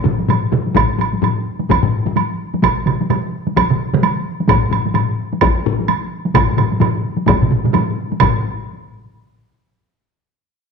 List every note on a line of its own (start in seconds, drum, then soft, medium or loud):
0.04 taiko low-mid loud
0.04 taiko mid medium
0.19 taiko high soft
0.29 taiko low-mid medium
0.29 taiko mid medium
0.29 taiko high medium
0.29 high woodblock soft
0.52 taiko low-mid medium
0.52 taiko mid loud
0.66 taiko high soft
0.75 taiko loud
0.75 taiko low-mid loud
0.75 taiko high medium
0.75 high woodblock medium
0.98 taiko low-mid medium
0.98 taiko high soft
0.98 high woodblock soft
1.14 taiko high soft
1.22 taiko low-mid medium
1.22 taiko high medium
1.22 high woodblock soft
1.60 taiko high medium
1.69 taiko loud
1.69 taiko high medium
1.69 high woodblock medium
1.83 taiko low-mid loud
2.06 taiko low-mid medium
2.06 taiko high medium
2.16 taiko high medium
2.16 high woodblock soft
2.54 taiko high medium
2.62 taiko medium
2.62 taiko mid medium
2.62 taiko high medium
2.62 high woodblock medium
2.86 taiko mid medium
2.86 taiko high medium
2.86 high woodblock soft
3.01 taiko high medium
3.10 taiko mid loud
3.10 taiko high medium
3.10 high woodblock soft
3.47 taiko high medium
3.56 taiko medium
3.56 taiko high medium
3.56 high woodblock medium
3.70 taiko mid medium
3.93 taiko mid loud
3.93 taiko high medium
4.03 taiko high medium
4.03 high woodblock medium
4.40 taiko high medium
4.48 taiko loud
4.48 taiko low-mid loud
4.48 taiko high medium
4.48 high woodblock medium
4.71 taiko low-mid medium
4.71 taiko high soft
4.71 high woodblock soft
4.86 taiko high medium
4.95 taiko low-mid loud
4.95 taiko high medium
4.95 high woodblock soft
5.33 taiko high medium
5.41 taiko loud
5.41 taiko high medium
5.41 high woodblock medium
5.66 taiko low-mid loud
5.79 taiko high medium
5.88 taiko high medium
5.88 high woodblock medium
6.26 taiko high medium
6.34 taiko loud
6.34 taiko low-mid loud
6.34 taiko mid loud
6.34 taiko high medium
6.34 high woodblock medium
6.57 taiko low-mid medium
6.57 taiko mid loud
6.57 taiko high medium
6.57 high woodblock soft
6.71 taiko high medium
6.80 taiko low-mid loud
6.80 taiko mid loud
6.80 taiko high medium
6.80 high woodblock soft
7.17 taiko high medium
7.26 taiko loud
7.26 taiko low-mid medium
7.26 taiko mid medium
7.26 taiko high medium
7.26 high woodblock medium
7.42 taiko low-mid medium
7.42 taiko mid medium
7.51 taiko low-mid medium
7.51 taiko mid medium
7.64 taiko low-mid medium
7.64 taiko mid medium
7.64 taiko high medium
7.73 taiko low-mid loud
7.73 taiko mid loud
7.73 taiko high medium
7.73 high woodblock soft
8.12 taiko high medium
8.20 taiko medium
8.20 taiko low-mid loud
8.20 taiko mid loud
8.20 taiko high medium
8.20 high woodblock medium